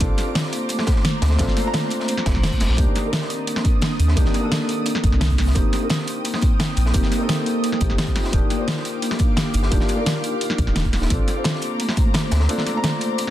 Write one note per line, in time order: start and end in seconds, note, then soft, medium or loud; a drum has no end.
0.00 0.09 A#1 loud
0.00 0.23 C4 medium
0.00 0.16 C4 medium
0.00 0.24 D4 medium
0.00 0.25 F4 medium
0.00 0.25 A4 loud
0.00 2.75 C5 medium
0.00 2.75 A#5 medium
0.00 2.74 D6 medium
0.00 kick loud
0.00 closed hi-hat loud
0.18 snare soft
0.18 closed hi-hat medium
0.25 1.36 C4 medium
0.25 1.37 D4 medium
0.25 1.38 F4 medium
0.29 1.38 C5 medium
0.35 snare loud
0.35 closed hi-hat loud
0.35 closed hi-hat medium
0.44 snare medium
0.53 0.62 A#3 medium
0.53 closed hi-hat medium
0.69 0.86 A3 medium
0.69 closed hi-hat loud
0.79 snare medium
0.87 kick loud
0.87 snare loud
0.87 closed hi-hat medium
0.96 snare soft
1.05 snare loud
1.05 closed hi-hat medium
1.22 1.38 D2 medium
1.22 1.38 C4 medium
1.22 snare loud
1.22 closed hi-hat medium
1.31 snare soft
1.38 1.47 A#1 loud
1.38 1.55 A#3 medium
1.38 1.62 C4 loud
1.38 1.63 D4 medium
1.38 1.63 F4 medium
1.38 1.64 A4 loud
1.38 kick loud
1.38 snare loud
1.38 closed hi-hat medium
1.38 closed hi-hat loud
1.48 snare soft
1.57 1.72 A3 medium
1.57 snare soft
1.57 closed hi-hat medium
1.63 2.75 C4 loud
1.63 2.76 D4 medium
1.63 2.76 F4 medium
1.67 2.77 A#5 loud
1.74 snare loud
1.74 closed hi-hat medium
1.90 closed hi-hat medium
2.00 snare soft
2.08 2.25 C4 medium
2.08 closed hi-hat medium
2.08 closed hi-hat loud
2.08 reverse cymbal medium
2.17 snare medium
2.26 2.34 F1 loud
2.26 kick loud
2.26 snare loud
2.26 closed hi-hat medium
2.35 2.43 A#1 loud
2.35 snare soft
2.43 2.51 F1 medium
2.43 snare loud
2.43 closed hi-hat medium
2.52 kick medium
2.52 closed hi-hat soft
2.60 2.69 F1 medium
2.60 2.77 C4 loud
2.60 snare loud
2.60 snare medium
2.60 closed hi-hat medium
2.69 2.77 A#1 loud
2.69 snare soft
2.77 2.86 C2 loud
2.77 3.01 A#3 medium
2.77 3.02 D4 medium
2.77 2.94 D4 medium
2.77 5.53 D4 medium
2.77 3.02 D#4 medium
2.77 3.03 G4 loud
2.77 5.53 D#6 medium
2.77 kick loud
2.77 closed hi-hat loud
2.77 closed hi-hat medium
2.95 snare soft
2.95 closed hi-hat medium
3.02 4.15 D#3 medium
3.02 4.14 A#3 medium
3.02 4.14 D4 medium
3.06 4.16 A#4 medium
3.13 snare loud
3.13 closed hi-hat loud
3.13 closed hi-hat medium
3.22 snare medium
3.30 3.40 C4 medium
3.30 closed hi-hat medium
3.47 3.64 A#3 medium
3.47 closed hi-hat medium
3.47 closed hi-hat loud
3.56 snare medium
3.65 kick loud
3.65 closed hi-hat medium
3.82 snare loud
3.82 closed hi-hat medium
3.82 closed hi-hat loud
3.99 4.15 D#2 medium
3.99 4.16 D4 medium
3.99 closed hi-hat medium
4.08 snare medium
4.16 4.25 C2 loud
4.16 4.39 A#3 loud
4.16 4.32 C4 medium
4.16 4.41 D4 medium
4.16 4.41 D#4 medium
4.16 4.41 G4 loud
4.16 kick loud
4.16 closed hi-hat loud
4.16 closed hi-hat medium
4.25 snare soft
4.34 4.50 A#3 medium
4.34 snare soft
4.34 closed hi-hat medium
4.41 5.54 D#3 medium
4.41 5.52 A#3 loud
4.41 5.53 D4 medium
4.45 5.55 A4 loud
4.52 snare loud
4.52 closed hi-hat medium
4.69 closed hi-hat medium
4.86 5.03 D4 medium
4.86 closed hi-hat medium
4.95 snare medium
5.04 5.11 G1 loud
5.04 5.13 C4 medium
5.04 kick loud
5.04 closed hi-hat medium
5.12 5.37 C2 loud
5.12 snare soft
5.21 5.36 A#3 medium
5.21 snare loud
5.21 closed hi-hat medium
5.21 closed hi-hat loud
5.30 kick medium
5.30 closed hi-hat soft
5.38 5.54 C2 loud
5.38 5.55 D4 medium
5.38 snare medium
5.38 closed hi-hat medium
5.38 open hi-hat medium
5.47 snare soft
5.55 5.63 F1 loud
5.55 5.78 A#3 medium
5.55 8.30 A#3 medium
5.55 5.79 C4 medium
5.55 5.71 D#4 medium
5.55 5.80 D#4 medium
5.55 5.80 G4 loud
5.55 8.30 G5 medium
5.55 8.30 D#6 medium
5.55 kick loud
5.55 closed hi-hat medium
5.55 closed hi-hat loud
5.73 snare soft
5.73 closed hi-hat medium
5.80 6.91 A#3 medium
5.80 6.92 C4 medium
5.80 6.93 D#4 medium
5.84 6.93 A#4 medium
5.90 snare loud
5.90 closed hi-hat medium
5.98 snare soft
6.07 6.17 C4 medium
6.07 closed hi-hat medium
6.25 6.41 A#3 medium
6.25 closed hi-hat medium
6.34 snare medium
6.41 kick loud
6.41 closed hi-hat medium
6.60 snare loud
6.60 closed hi-hat medium
6.77 6.93 A#1 medium
6.77 6.93 D#4 medium
6.77 closed hi-hat medium
6.86 snare soft
6.93 7.02 F1 loud
6.93 7.17 A#3 loud
6.93 7.18 C4 medium
6.93 7.10 C4 medium
6.93 7.18 D#4 medium
6.93 7.19 G4 loud
6.93 kick loud
6.93 closed hi-hat loud
6.93 closed hi-hat medium
7.03 snare soft
7.12 7.27 A#3 medium
7.12 snare soft
7.12 closed hi-hat medium
7.18 7.78 A#3 loud
7.18 7.79 C4 medium
7.18 7.80 D#4 medium
7.22 7.80 A4 loud
7.29 snare loud
7.29 closed hi-hat medium
7.46 closed hi-hat medium
7.64 7.80 D#4 medium
7.64 closed hi-hat medium
7.72 snare medium
7.79 7.91 A#1 loud
7.79 8.30 A#3 medium
7.79 8.31 C4 medium
7.79 8.31 D#4 medium
7.79 7.90 G4 medium
7.79 kick loud
7.79 closed hi-hat medium
7.83 8.32 G4 medium
7.90 7.97 F1 medium
7.90 snare soft
7.98 snare loud
7.98 closed hi-hat medium
8.07 kick medium
8.07 closed hi-hat soft
8.15 8.25 F4 medium
8.15 snare medium
8.15 closed hi-hat medium
8.15 open hi-hat medium
8.24 snare soft
8.32 8.41 D#1 loud
8.32 8.55 A#3 medium
8.32 8.57 D4 medium
8.32 8.57 F4 medium
8.32 11.08 G4 medium
8.32 8.57 G4 loud
8.32 11.08 F5 medium
8.32 11.08 D6 loud
8.32 kick loud
8.32 closed hi-hat medium
8.50 snare soft
8.50 closed hi-hat medium
8.57 9.69 A#3 medium
8.57 9.70 F4 medium
8.57 9.69 D5 medium
8.61 9.71 C5 medium
8.68 snare loud
8.68 closed hi-hat medium
8.77 snare soft
8.85 8.94 D4 medium
8.85 closed hi-hat medium
9.02 9.19 A#3 medium
9.02 closed hi-hat medium
9.11 snare medium
9.19 kick loud
9.19 closed hi-hat medium
9.37 snare loud
9.37 closed hi-hat medium
9.54 9.70 G1 medium
9.54 9.71 D#4 medium
9.54 closed hi-hat medium
9.63 snare medium
9.71 9.80 D#1 loud
9.71 9.94 A#3 loud
9.71 9.96 D4 medium
9.71 9.87 D4 medium
9.71 9.96 F4 medium
9.71 9.96 G4 loud
9.71 kick loud
9.71 closed hi-hat medium
9.71 closed hi-hat loud
9.80 snare soft
9.89 10.05 A#3 medium
9.89 snare soft
9.89 closed hi-hat medium
9.96 11.07 A#3 loud
9.96 11.09 F4 medium
9.96 11.08 D5 medium
10.00 11.09 A#4 loud
10.06 snare loud
10.06 closed hi-hat medium
10.06 closed hi-hat loud
10.24 closed hi-hat medium
10.41 10.58 D#4 medium
10.41 closed hi-hat medium
10.50 snare medium
10.58 10.66 A#1 loud
10.58 10.68 D4 medium
10.58 kick loud
10.58 closed hi-hat medium
10.67 10.92 D#1 loud
10.67 snare soft
10.76 10.91 A#3 medium
10.76 snare loud
10.76 closed hi-hat medium
10.85 kick medium
10.85 closed hi-hat soft
10.93 11.09 D#1 loud
10.93 11.10 D#4 medium
10.93 snare medium
10.93 closed hi-hat medium
10.93 open hi-hat medium
11.02 snare soft
11.09 11.18 A#1 loud
11.09 11.33 C4 medium
11.09 11.26 C4 medium
11.09 11.34 D4 medium
11.09 11.35 F4 medium
11.09 11.35 A4 loud
11.09 13.30 C5 medium
11.09 13.30 A#5 medium
11.09 13.30 D6 medium
11.09 kick loud
11.09 closed hi-hat medium
11.09 closed hi-hat loud
11.28 snare soft
11.28 closed hi-hat medium
11.34 12.46 C4 medium
11.34 12.47 D4 medium
11.34 12.47 F4 medium
11.38 12.48 C5 medium
11.44 snare loud
11.44 closed hi-hat medium
11.44 closed hi-hat loud
11.55 snare soft
11.62 11.72 A#3 medium
11.62 closed hi-hat medium
11.80 11.96 A3 medium
11.80 closed hi-hat medium
11.89 snare soft
11.89 snare medium
11.97 kick loud
11.97 closed hi-hat medium
12.14 snare loud
12.14 closed hi-hat medium
12.14 closed hi-hat loud
12.31 12.47 D2 medium
12.31 12.48 C4 medium
12.31 snare medium
12.31 closed hi-hat medium
12.40 snare medium
12.48 12.65 A#3 medium
12.48 12.72 C4 loud
12.48 12.73 D4 medium
12.48 12.73 F4 medium
12.48 12.74 A4 loud
12.48 closed hi-hat medium
12.48 closed hi-hat loud
12.58 snare soft
12.67 12.82 A3 medium
12.67 snare soft
12.67 closed hi-hat medium
12.73 13.30 C4 loud
12.73 13.30 D4 medium
12.73 13.30 F4 medium
12.77 13.30 A#5 loud
12.84 snare loud
12.84 closed hi-hat medium
12.84 closed hi-hat loud
13.01 closed hi-hat medium
13.18 13.30 C4 medium
13.18 closed hi-hat medium
13.18 closed hi-hat loud